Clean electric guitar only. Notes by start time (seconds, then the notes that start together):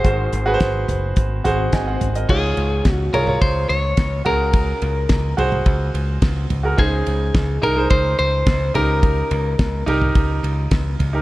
Already playing: C5
2.30 G#4
2.92 F#4
3.14 A#4
3.42 C5
3.69 C#5
4.26 A#4
6.79 G#4
7.63 A#4
7.90 C5
8.19 C5
8.75 A#4